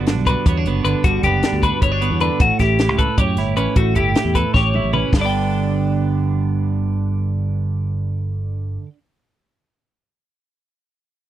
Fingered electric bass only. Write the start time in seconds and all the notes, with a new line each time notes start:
Already playing: G1
0.17 B1
0.46 E2
0.66 F#1
0.85 G1
1.04 G1
1.23 F#1
1.53 D2
1.82 G1
2.11 E2
2.40 A1
2.59 A1
2.89 C#2
3.17 F#2
3.37 G1
3.57 A1
3.76 A1
3.96 G1
4.25 E2
4.54 A1
4.84 A1
5.12 G1